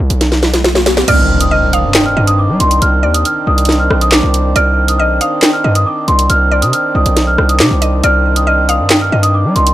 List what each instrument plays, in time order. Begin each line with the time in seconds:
Already playing: riser
0.10 808-style bass B1, closed hi-hat
0.21 snare, closed hi-hat
0.32 snare
0.43 snare
0.54 snare, closed hi-hat
0.64 snare
0.75 snare
0.86 snare, closed hi-hat
0.97 snare
1.08 808-style bass C2, harmonium D#3 C4 D4, synth pluck D5, celesta F6, closed hi-hat, crash, impact
1.41 celesta D#6, closed hi-hat
1.51 synth pluck D#5, celesta F6
1.73 synth pluck F5, celesta D#6, closed hi-hat
1.84 808-style bass G2
1.94 synth pluck G5, snare, clap, closed hi-hat
2.06 celesta F6
2.17 808-style bass G2, synth pluck D#5
2.27 celesta D#6, closed hi-hat
2.39 celesta D6
2.49 808-style bass G3
2.60 808-style bass C2, celesta C6, closed hi-hat
2.71 closed hi-hat
2.82 808-style bass C2, celesta F6, closed hi-hat
3.03 808-style bass D#2, synth pluck D5
3.14 celesta D#6, closed hi-hat
3.25 celesta F6, closed hi-hat
3.47 808-style bass C2, celesta D#6
3.58 closed hi-hat
3.65 snare, closed hi-hat
3.72 closed hi-hat
3.80 celesta F6
3.91 808-style bass B1, cross-stick
4.01 celesta D#6, closed hi-hat
4.12 celesta D6, snare, clap
4.23 808-style bass C2
4.34 closed hi-hat
4.56 808-style bass C2, synth pluck D5, celesta F6, closed hi-hat
4.88 celesta D#6, closed hi-hat
4.98 808-style bass B1, synth pluck D#5, celesta F6
5.21 synth pluck F5, celesta D#6, closed hi-hat
5.42 synth pluck G5, snare, clap, closed hi-hat
5.53 celesta F6
5.64 808-style bass G2, synth pluck D#5
5.75 celesta D#6, closed hi-hat
5.86 celesta D6
6.08 808-style bass C2, celesta C6, closed hi-hat
6.19 closed hi-hat
6.30 808-style bass C2, celesta F6, closed hi-hat
6.51 synth pluck D5
6.62 808-style bass C3, celesta D#6, closed hi-hat
6.73 celesta F6, closed hi-hat
6.95 808-style bass C2, celesta D#6
7.06 808-style bass B1, closed hi-hat
7.17 snare, closed hi-hat
7.27 celesta F6
7.38 808-style bass C2, cross-stick
7.49 celesta D#6, closed hi-hat
7.60 808-style bass C3, celesta D6, snare, clap
7.71 808-style bass C2
7.82 synth pluck D#5, closed hi-hat
8.04 808-style bass C2, synth pluck D5, celesta F6, closed hi-hat
8.36 celesta D#6, closed hi-hat
8.47 synth pluck D#5, celesta F6
8.69 synth pluck F5, celesta D#6, closed hi-hat
8.80 808-style bass G2
8.90 synth pluck G5, snare, clap, closed hi-hat
9.01 celesta F6
9.12 808-style bass G2, synth pluck D#5
9.23 celesta D#6, closed hi-hat
9.34 celesta D6
9.45 808-style bass G3
9.56 808-style bass C2, celesta C6, closed hi-hat
9.67 closed hi-hat